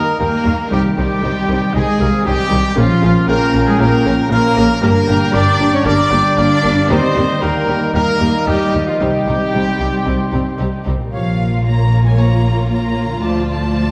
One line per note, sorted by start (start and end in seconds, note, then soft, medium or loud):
0.00 0.72 D#3 medium
0.00 2.58 D#3 medium
0.00 0.17 A#3 medium
0.00 0.70 A#3 medium
0.00 0.72 A#3 medium
0.00 1.09 D#4 medium
0.00 0.18 A#4 medium
0.00 0.18 A#4 loud
0.00 0.32 A#4 medium
0.00 0.16 D#5 medium
0.00 0.44 D#5 medium
0.00 0.19 A#5 loud
0.00 1.22 A#5 medium
0.06 1.60 D#6 medium
0.19 0.28 D#2 medium
0.19 0.27 D#3 medium
0.19 0.27 G3 medium
0.19 0.69 A#3 loud
0.19 0.28 A#3 medium
0.19 0.28 D#4 medium
0.19 0.69 A#4 loud
0.19 0.70 A#4 loud
0.19 0.45 G5 medium
0.19 0.70 A#5 medium
0.45 0.54 D#2 medium
0.45 0.53 D#3 medium
0.45 0.53 G3 medium
0.45 0.53 A#3 medium
0.45 0.53 D#4 medium
0.45 1.22 D#5 medium
0.45 0.58 F5 medium
0.71 0.79 C2 medium
0.71 2.79 C3 medium
0.71 0.79 D#3 medium
0.71 0.79 G3 medium
0.71 0.95 G3 medium
0.71 2.58 C4 medium
0.71 0.79 C4 medium
0.71 0.79 D#4 medium
0.71 0.95 G4 medium
0.71 0.83 G4 medium
0.71 1.75 G5 loud
0.71 0.97 G5 medium
0.84 2.79 D#3 medium
0.96 1.06 C2 medium
0.96 1.05 D#3 medium
0.96 1.72 G3 loud
0.96 1.05 G3 medium
0.96 2.79 C4 medium
0.96 1.07 C4 medium
0.96 1.07 D#4 medium
0.96 1.72 G4 medium
0.96 1.73 G4 loud
0.96 1.46 G5 medium
1.10 2.63 D#4 medium
1.22 1.31 C2 medium
1.22 1.30 D#3 medium
1.22 1.30 G3 medium
1.22 1.32 C4 medium
1.22 1.32 D#4 medium
1.22 1.47 D#5 medium
1.35 2.37 C5 medium
1.48 1.56 C2 medium
1.48 1.56 D#3 medium
1.48 1.56 G3 medium
1.48 1.58 C4 medium
1.48 1.59 D#4 medium
1.48 1.73 D#5 medium
1.61 1.85 D#6 medium
1.72 1.83 C2 medium
1.72 1.82 D#3 medium
1.72 1.82 G3 medium
1.72 2.25 G#3 loud
1.72 1.83 C4 medium
1.72 1.83 D#4 medium
1.72 2.23 G#4 loud
1.72 2.24 G#4 loud
1.72 2.03 D#5 medium
1.72 2.22 G#5 loud
1.87 2.12 D#6 medium
2.00 2.08 C2 medium
2.00 2.08 D#3 medium
2.00 2.08 G3 medium
2.00 2.09 C4 medium
2.00 2.09 D#4 medium
2.00 2.24 D#5 medium
2.00 2.26 F5 medium
2.13 2.79 D#6 medium
2.25 2.34 C2 medium
2.25 2.33 D#3 medium
2.25 2.33 G3 medium
2.25 2.77 G3 loud
2.25 2.35 C4 medium
2.25 2.36 D#4 medium
2.25 2.76 G4 loud
2.25 2.50 D#5 medium
2.25 2.59 D#5 medium
2.25 2.76 G5 loud
2.38 2.78 C5 medium
2.50 2.60 C2 medium
2.50 2.58 D#3 medium
2.50 2.58 G3 medium
2.50 2.62 C4 medium
2.50 2.61 D#4 medium
2.50 2.79 D#5 medium
2.64 2.79 D#4 medium
2.75 2.85 A#1 loud
2.75 4.85 A#2 medium
2.75 2.84 C#3 medium
2.75 4.83 F3 loud
2.75 3.27 F3 loud
2.75 2.84 A#3 medium
2.75 4.78 C#4 loud
2.75 2.85 C#4 medium
2.75 3.27 F4 loud
2.75 2.85 F4 medium
2.75 3.30 F5 loud
2.79 3.29 F5 medium
2.90 4.85 F3 medium
3.02 3.10 A#1 medium
3.02 3.11 C#3 medium
3.02 3.11 A#3 medium
3.02 4.85 C#4 medium
3.02 3.10 C#4 medium
3.02 3.10 F4 medium
3.25 3.36 A#1 medium
3.25 3.36 C#3 medium
3.25 3.36 A#3 medium
3.25 3.66 A#3 loud
3.25 3.37 C#4 medium
3.25 3.37 F4 medium
3.25 3.64 A#4 loud
3.25 4.56 A#4 medium
3.25 3.66 A#4 loud
3.25 4.32 G5 loud
3.25 3.68 A#5 loud
3.41 4.42 C#5 medium
3.54 3.62 A#1 medium
3.54 3.62 C#3 medium
3.54 3.62 A#3 medium
3.54 3.62 C#4 medium
3.54 3.63 F4 medium
3.54 3.79 F5 medium
3.66 3.72 G#3 loud
3.66 3.79 G#4 loud
3.66 3.80 G#4 loud
3.66 3.82 G#5 loud
3.66 3.91 A#5 medium
3.79 3.87 A#1 medium
3.79 3.87 C#3 medium
3.79 3.87 A#3 loud
3.79 4.30 A#3 loud
3.79 3.87 C#4 loud
3.79 3.87 F4 medium
3.79 4.30 A#4 loud
3.79 4.04 F5 medium
3.79 4.31 A#5 loud
4.05 4.13 A#1 medium
4.05 4.13 C#3 medium
4.05 4.13 A#3 medium
4.05 4.13 C#4 medium
4.05 4.13 F4 medium
4.19 5.72 A#5 medium
4.29 4.38 A#1 medium
4.29 4.37 C#3 medium
4.29 4.38 A#3 medium
4.29 4.82 A#3 loud
4.29 4.41 C#4 medium
4.29 4.40 F4 medium
4.29 4.81 A#4 loud
4.29 4.80 A#4 loud
4.29 4.80 F5 medium
4.29 4.85 F5 medium
4.29 4.82 A#5 loud
4.44 4.85 C#5 medium
4.56 4.65 A#1 loud
4.56 4.64 C#3 medium
4.56 4.64 A#3 medium
4.56 4.64 C#4 medium
4.56 4.64 F4 medium
4.70 4.85 F4 medium
4.81 4.91 G1 loud
4.81 6.92 G2 loud
4.81 4.89 G3 loud
4.81 8.95 G3 loud
4.81 4.89 A#3 medium
4.81 5.34 A#3 loud
4.81 6.86 D4 medium
4.81 4.91 D4 medium
4.81 4.91 G4 medium
4.81 4.93 A#4 loud
4.81 5.33 A#4 loud
4.81 5.35 A#5 loud
4.95 6.92 D3 medium
5.08 5.16 G1 medium
5.08 5.16 G3 medium
5.08 5.16 A#3 medium
5.08 5.17 D4 medium
5.08 6.93 D4 medium
5.08 5.18 G4 medium
5.08 5.87 G5 loud
5.21 6.76 G4 medium
5.32 5.42 G1 medium
5.32 5.41 G3 medium
5.32 5.41 A#3 medium
5.32 5.42 D4 medium
5.32 5.74 D4 loud
5.32 5.42 G4 medium
5.32 6.63 A#4 medium
5.32 5.72 D5 loud
5.32 5.73 D5 loud
5.32 5.75 D6 loud
5.47 6.49 D5 medium
5.60 5.68 G1 medium
5.60 5.68 G3 medium
5.60 5.68 A#3 medium
5.60 5.68 D4 medium
5.60 5.68 G4 medium
5.60 5.84 G5 medium
5.72 5.79 C#4 loud
5.72 5.86 C#5 loud
5.72 5.97 A#5 medium
5.72 5.87 C#6 loud
5.85 5.94 G1 loud
5.85 5.94 G3 medium
5.85 5.93 A#3 medium
5.85 5.94 D4 medium
5.85 6.37 D4 loud
5.85 5.93 G4 medium
5.85 6.13 A#4 loud
5.85 6.36 D5 loud
5.85 6.35 D5 loud
5.85 6.11 G5 medium
5.85 6.38 D6 loud
5.98 6.24 A#5 medium
6.11 6.20 G1 loud
6.11 6.20 G3 medium
6.11 6.20 A#3 medium
6.11 6.20 D4 medium
6.11 6.19 G4 medium
6.11 6.40 G5 loud
6.11 6.37 G5 medium
6.25 7.81 A#5 medium
6.36 6.45 G1 loud
6.36 6.45 G3 medium
6.36 6.45 A#3 medium
6.36 6.44 D4 medium
6.36 6.89 D4 loud
6.36 6.45 G4 medium
6.36 6.88 D5 loud
6.36 6.89 D5 loud
6.36 6.89 F5 medium
6.36 6.89 D6 loud
6.63 6.71 G1 loud
6.63 6.71 G3 medium
6.63 6.71 A#3 medium
6.63 6.72 D4 medium
6.63 6.72 G4 medium
6.63 7.42 A#4 medium
6.78 7.29 G4 medium
6.88 6.97 D#2 loud
6.88 9.02 D#3 loud
6.88 6.98 G3 loud
6.88 6.98 A#3 loud
6.88 7.42 C4 loud
6.88 6.98 D#4 loud
6.88 10.82 D#4 loud
6.88 6.98 G4 medium
6.88 7.40 C5 loud
6.88 7.41 C5 loud
6.88 7.41 D#5 loud
6.88 7.43 C6 loud
7.03 9.02 A#3 medium
7.15 7.24 D#2 loud
7.15 7.24 G3 medium
7.15 7.24 A#3 medium
7.15 7.23 D#4 medium
7.15 9.26 D#4 medium
7.15 7.23 G4 medium
7.30 8.87 G4 medium
7.41 7.50 D#2 medium
7.41 7.49 G3 medium
7.41 7.49 A#3 medium
7.41 7.94 A#3 medium
7.41 7.50 D#4 medium
7.41 7.50 G4 medium
7.41 7.94 A#4 loud
7.41 7.93 A#4 loud
7.41 8.73 A#4 medium
7.41 7.96 G5 loud
7.41 7.94 A#5 loud
7.56 8.60 D#5 medium
7.68 7.76 D#2 medium
7.68 7.76 G3 medium
7.68 7.76 A#3 medium
7.68 7.76 D#4 medium
7.68 7.76 G4 medium
7.68 7.94 G5 medium
7.83 8.08 A#5 medium
7.94 8.02 D#2 medium
7.94 8.02 G3 medium
7.94 8.02 A#3 medium
7.94 8.46 A#3 loud
7.94 8.04 D#4 medium
7.94 8.03 G4 medium
7.94 8.46 A#4 loud
7.94 8.48 F5 loud
7.94 8.21 G5 medium
7.94 8.23 A#5 loud
8.10 8.35 A#5 medium
8.20 8.28 D#2 medium
8.20 8.29 G3 medium
8.20 8.29 A#3 medium
8.20 8.28 D#4 medium
8.20 8.28 G4 medium
8.20 8.47 G5 medium
8.36 9.03 A#5 medium
8.46 8.54 D#2 medium
8.46 8.55 G3 medium
8.46 8.86 G3 loud
8.46 8.55 A#3 medium
8.46 8.55 D#4 medium
8.46 8.85 G4 medium
8.46 8.54 G4 medium
8.46 8.87 G4 loud
8.46 8.99 D#5 medium
8.46 8.88 G5 medium
8.46 9.80 G5 medium
8.62 9.67 D#5 medium
8.73 8.81 D#2 medium
8.73 8.81 G3 medium
8.73 8.81 A#3 medium
8.73 8.81 D#4 medium
8.73 8.81 G4 medium
8.73 9.03 A#4 medium
8.87 9.00 F3 medium
8.87 9.00 F4 medium
8.87 9.39 G4 medium
8.87 8.99 F5 medium
8.99 9.08 C2 medium
8.99 11.15 C3 medium
8.99 9.09 G3 medium
8.99 10.87 G3 medium
8.99 10.83 G3 medium
8.99 9.08 C4 medium
8.99 9.08 D#4 medium
8.99 9.08 G4 medium
8.99 10.83 G4 loud
8.99 10.82 G5 loud
8.99 10.82 G5 medium
9.15 11.15 G3 medium
9.26 9.35 C2 medium
9.26 9.35 G3 medium
9.26 9.35 C4 medium
9.26 9.34 D#4 medium
9.26 11.15 D#4 medium
9.26 9.34 G4 medium
9.41 10.99 G4 medium
9.52 9.62 C2 medium
9.52 9.62 G3 medium
9.52 9.62 C4 medium
9.52 9.60 D#4 medium
9.52 9.60 G4 medium
9.52 10.86 C5 medium
9.68 10.72 D#5 medium
9.78 9.88 C2 medium
9.78 9.89 G3 medium
9.78 9.89 C4 medium
9.78 9.86 D#4 medium
9.78 9.86 G4 medium
9.78 10.06 G5 medium
9.94 10.19 C6 medium
10.04 10.14 C2 medium
10.04 10.15 G3 medium
10.04 10.15 C4 medium
10.04 10.12 D#4 medium
10.04 10.12 G4 medium
10.20 10.45 C6 medium
10.31 10.41 C2 medium
10.31 10.41 G3 medium
10.31 10.41 C4 medium
10.31 10.39 D#4 medium
10.31 10.39 G4 medium
10.31 10.59 G5 medium
10.47 11.15 C6 medium
10.58 10.68 C2 medium
10.58 10.68 G3 medium
10.58 10.67 C4 medium
10.58 10.66 D#4 medium
10.58 10.67 G4 medium
10.58 11.15 G5 medium
10.74 11.15 D#5 medium
10.84 10.95 C2 medium
10.84 10.94 G3 medium
10.84 10.94 C4 medium
10.84 10.93 D#4 medium
10.84 10.92 G4 medium
10.84 11.15 C5 medium
10.96 13.16 A#2 medium
10.96 13.13 F4 medium
11.01 11.15 G4 medium
11.05 13.20 A#4 medium
11.09 13.18 A#1 medium
11.09 11.61 F3 medium
11.09 13.18 A#3 medium
11.09 13.91 F4 medium
11.09 13.22 C#5 medium
11.09 13.18 C#5 medium
11.09 11.31 C#5 medium
11.09 11.61 F5 medium
11.09 11.62 F5 medium
11.14 11.32 F3 medium
11.14 11.33 F4 medium
11.64 12.04 A#3 medium
11.64 12.03 A#5 medium
11.64 12.04 A#5 medium
12.04 12.09 G#3 medium
12.04 12.16 G#5 medium
12.04 12.18 G#5 medium
12.17 12.37 F3 medium
12.17 12.68 A#3 medium
12.17 12.36 F4 medium
12.17 12.36 C#5 medium
12.17 12.68 A#5 medium
12.17 12.70 A#5 loud
12.69 13.21 A#3 medium
12.69 13.21 A#5 medium
12.69 13.22 A#5 medium
13.05 13.91 D3 medium
13.10 13.91 D4 medium
13.14 13.91 F4 soft
13.18 13.91 D2 medium
13.18 13.91 F3 medium
13.18 13.40 F3 medium
13.18 13.47 A3 medium
13.18 13.40 F4 medium
13.18 13.91 D5 medium
13.22 13.40 D5 medium
13.22 13.91 D5 medium
13.22 13.48 A5 medium
13.48 13.91 A3 medium
13.48 13.91 A5 medium
13.48 13.91 A5 loud